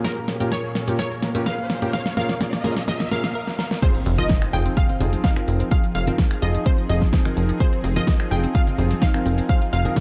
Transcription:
Already playing: A#2 F3 C#4 G#4, riser
0.04 A#2 A#3 C#4 F4 G#4 A#4, kick, snare, closed hi-hat
0.17 A#3
0.28 A#3, snare, open hi-hat
0.40 A#2 A#3 C#4 F4 G4 A#4, closed hi-hat
0.52 A#2 G#4 A#4 C#5, kick, snare, closed hi-hat
0.64 A#3
0.75 A#3, snare, open hi-hat
0.88 A#2 A#3 C#4 F4 G4 A#4, closed hi-hat
0.99 A#2 G#4 A#4 C#5, kick, snare, closed hi-hat
1.11 A#3
1.23 A#3, snare, open hi-hat
1.35 A#2 A#3 C#4 F4 G4 A#4, closed hi-hat
1.46 A#2 A#3 C#4 F4 G#4 A#4 F5, kick, snare, closed hi-hat
1.59 A#3
1.70 A#3, snare, open hi-hat
1.82 A#2 A#3 C#4 F4 G4 A#4, closed hi-hat
1.93 A#2 G#4 A#4 F5, kick, snare, closed hi-hat
2.06 A#3, snare
2.17 A#2 A#3 C#4 F4 G#4 A#4 F5, snare, open hi-hat
2.29 A#3, snare, closed hi-hat
2.41 A#2 A#3 C#4 F4 G#4 A#4, kick, snare, closed hi-hat
2.53 A#3, snare
2.64 A#2 A#3 C#4 F4 G#4 A#4, snare, open hi-hat
2.77 A#3, snare, closed hi-hat
2.88 A#2 A#3 C#4 F4 G#4 A#4 D#5, kick, snare, closed hi-hat
3.00 A#3, snare
3.11 A#2 A#3 C#4 F4 G#4 A#4 F5, snare, open hi-hat
3.24 A#3, snare, closed hi-hat
3.35 A#4
3.48 A#3, snare
3.59 A#4, snare
3.71 A#3, snare
3.82 F3 C4 D#4 F4 G#4 C5, kick, closed hi-hat, crash, impact, cabasa
3.95 C4, closed hi-hat
4.06 F1 C4, open hi-hat, high bongo, cabasa
4.18 F3 C4 D#4 F4 A#4 D#5, closed hi-hat, low conga, cabasa
4.29 C4, kick, snare, closed hi-hat, cabasa
4.42 C4, finger snap
4.53 F1 F3 C4 D#4 F4 G#4 G5, open hi-hat, high bongo, cabasa
4.66 C4, closed hi-hat, cabasa
4.77 F3 C4 D#4 F4 G#4 F5, kick, closed hi-hat, cabasa
4.89 C4, closed hi-hat, low conga
5.00 F1 F3 C4 D#4 F4 G#4, open hi-hat, high bongo, low conga, cabasa
5.13 C4, closed hi-hat, high conga, cabasa
5.24 D#4 F5, kick, snare, closed hi-hat, cabasa
5.36 F3 C4 D#4 F4 A#4, finger snap, closed hi-hat
5.48 F1 C4, open hi-hat, high bongo, cabasa
5.60 C4, closed hi-hat, cabasa
5.71 F3 C4 D#4 F4 G#4 F5, kick, closed hi-hat, cabasa
5.84 F3, closed hi-hat
5.95 F1 F3 F5, open hi-hat, high bongo, cabasa
6.07 F3 C4 D#4 F4 A#4, closed hi-hat, low conga, cabasa
6.18 F3, kick, snare, closed hi-hat, high conga, cabasa
6.31 F3, finger snap
6.42 F1 F3 C4 D#4 F4 G#4 D#5, open hi-hat, high bongo, cabasa
6.55 F3, closed hi-hat, cabasa
6.65 C4 F4 G#4 C5, kick, closed hi-hat, cabasa
6.78 F3, closed hi-hat
6.89 F1 F3 C4 D#4 F4 G#4 D#5, open hi-hat, high bongo, cabasa
7.02 F3, kick, snare, closed hi-hat, cabasa
7.13 C4, kick, snare, closed hi-hat, cabasa
7.25 F3 C4 D#4 F4 A#4, finger snap, closed hi-hat, low conga
7.36 F1 F3, open hi-hat, high bongo, cabasa
7.49 F3, closed hi-hat, cabasa
7.60 F3 C4 D#4 F4 G#4 C5, kick, closed hi-hat, cabasa
7.73 C4, closed hi-hat
7.84 F1 C4, open hi-hat, high bongo, cabasa
7.96 F3 C4 D#4 F4 A#4 D#5, closed hi-hat, low conga, cabasa
8.07 C4, kick, snare, closed hi-hat, cabasa
8.20 C4, finger snap
8.31 F1 F3 C4 D#4 F4 G#4 G5, open hi-hat, high bongo, cabasa
8.43 C4, closed hi-hat, cabasa
8.55 F3 C4 D#4 F4 G#4 F5, kick, closed hi-hat, cabasa
8.67 C4, closed hi-hat, low conga
8.78 F1 F3 C4 D#4 F4 G#4, open hi-hat, high bongo, low conga, cabasa
8.91 C4, closed hi-hat, high conga, cabasa
9.02 D#4 F5, kick, snare, closed hi-hat, cabasa
9.14 F3 C4 D#4 F4 A#4, finger snap, closed hi-hat
9.26 F1 C4, open hi-hat, high bongo, cabasa
9.38 C4, closed hi-hat, cabasa
9.49 F3 C4 D#4 F4 G#4 C5 F5, kick, closed hi-hat, cabasa
9.62 F4, closed hi-hat
9.73 F1 F4 F5, open hi-hat, high bongo, cabasa
9.85 F3 C4 D#4 F4 G#4 A#4, closed hi-hat, low conga, cabasa
9.96 F4, kick, snare, closed hi-hat, cabasa

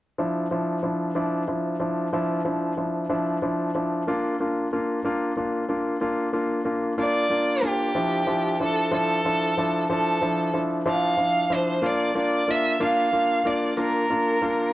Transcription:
0.18 F3 D4 E4
0.51 F3 D4 E4
0.83 F3 D4 E4
1.15 F3 D4 E4
1.48 F3 D4 E4
1.80 F3 D4 E4
2.13 F3 D4 E4
2.45 F3 D4 E4
2.77 F3 D4 E4
3.09 F3 D4 E4
3.42 F3 D4 E4
3.75 F3 D4 E4
4.07 A#3 D4 F4
4.40 A#3 D4 F4
4.73 A#3 D4 F4
5.04 A#3 D4 F4
5.37 A#3 D4 F4
5.69 A#3 D4 F4
6.01 A#3 D4 F4
6.33 A#3 D4 F4
6.65 A#3 D4 F4
6.98 A#3 D4 F4 D5
7.30 A#3 D4 F4
7.62 A#3 D4 F4 G4
7.95 F3 D4 E4
8.27 F3 D4 E4
8.60 F3 D4 E4 A4
8.91 F3 D4 E4 A4
9.25 F3 D4 E4
9.57 F3 D4 E4
9.90 F3 D4 E4 A4
10.22 F3 D4 E4
10.54 F3 D4 E4
10.86 F3 D4 E4 F5
11.17 F3 D4 E4
11.50 F3 D4 E4
11.54 C5
11.82 A#3 D4 F4
11.86 D5
12.15 A#3 D4 F4 D5
12.48 A#3 D4 F4 E5
12.80 A#3 D4 F4 F5
13.13 A#3 D4 F4
13.45 A#3 D4 F4 D5
13.77 A#3 D4 F4 A#4
14.10 A#3 D4 F4
14.42 A#3 D4 F4

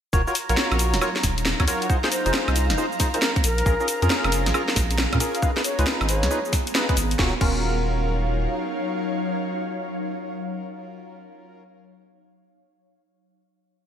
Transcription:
0.13 D#1 D#4 F4 F#4 A#4 C#5 A#5, kick, cabasa
0.27 F4 F#4 A#4 C#5, cabasa
0.33 F#3, open hi-hat, cabasa
0.49 A#1 F4 F#4 A#4 C#5, closed hi-hat, cabasa
0.56 F5, snare, cabasa
0.71 A#1, closed hi-hat, cabasa, high woodblock
0.79 open hi-hat, cabasa
0.94 D#1, snare, closed hi-hat, cabasa
1.01 F4 F#4 A#4 C#5, cabasa, high woodblock
1.16 snare, cabasa
1.23 D#1, kick, snare, open hi-hat, cabasa
1.38 closed hi-hat, cabasa
1.46 snare, cabasa
1.60 D#2 F4 F#4 A#4 C#5, kick, closed hi-hat, cabasa, high woodblock
1.68 F4 F#4 A#4 C#5, open hi-hat, cabasa
1.82 F#5, closed hi-hat, cabasa
1.90 D#4 F4 G#4 C5, kick, cabasa
2.04 D#4 F4 G#4 C5, snare, cabasa
2.10 G#4 C5, open hi-hat, cabasa
2.26 F1 D#4 F4 G#4 C5, closed hi-hat, cabasa
2.34 snare, cabasa
2.48 C2, closed hi-hat, cabasa, high woodblock
2.56 open hi-hat, cabasa
2.70 F1, snare, closed hi-hat, cabasa
2.78 D#4 F4 G#4 C5, cabasa
2.92 cabasa
3.00 D#4 F4 G#4 C5, kick, snare, open hi-hat, cabasa
3.14 D#4 F4 G#4 A#4 C5, closed hi-hat, cabasa
3.22 snare, cabasa
3.36 kick, closed hi-hat, cabasa
3.44 A#1 C#4 A#4, open hi-hat, cabasa
3.58 closed hi-hat, cabasa
3.66 A#1 C#4 F4 G#4 A#4, kick, cabasa
3.80 C#4 F4 G#4 A#4, cabasa
3.85 A#4, open hi-hat, cabasa
4.02 F2 C#4 F4 G#4 A#4, closed hi-hat, cabasa
4.10 snare, cabasa
4.24 F1, closed hi-hat, cabasa, high woodblock
4.32 open hi-hat, cabasa
4.46 A#1, snare, closed hi-hat, cabasa
4.54 C#4 F4 G#4 A#4, cabasa, high woodblock
4.68 snare, cabasa
4.76 A#1, kick, snare, open hi-hat, cabasa
4.91 closed hi-hat, cabasa
4.98 snare, cabasa
5.13 A#2 C#4 F4 G#4 A#4, kick, closed hi-hat, cabasa, high woodblock
5.20 C#4 F4 G#4 A#4, open hi-hat, cabasa
5.35 F5, closed hi-hat, cabasa
5.42 B3 D#4 F4 G#4 B4, kick, cabasa
5.57 D#4 F4 G#4 B4, snare, cabasa
5.64 C#5, open hi-hat, cabasa
5.79 C#2 D#4 F4 G#4 B4, closed hi-hat, cabasa
5.87 snare, cabasa
6.01 G#1, closed hi-hat, cabasa, high woodblock
6.09 C#5, open hi-hat, cabasa
6.23 C#2, snare, closed hi-hat, cabasa
6.31 D#4 F4 G#4 B4, cabasa
6.45 cabasa
6.53 kick, snare, open hi-hat, cabasa
6.67 closed hi-hat, cabasa
6.75 D#4 F4 G#4 B4, snare, cabasa
6.89 D#4 F4 G#4 B4, kick, closed hi-hat, cabasa
6.97 G#1, open hi-hat, cabasa
7.11 closed hi-hat, cabasa
7.19 D#1 C#4 D#4 F4 F#4 A#4, kick, snare
7.28 F#3
7.35 C#5
7.40 D#1 C#4 F4 F#4 A#4 F5, kick, crash

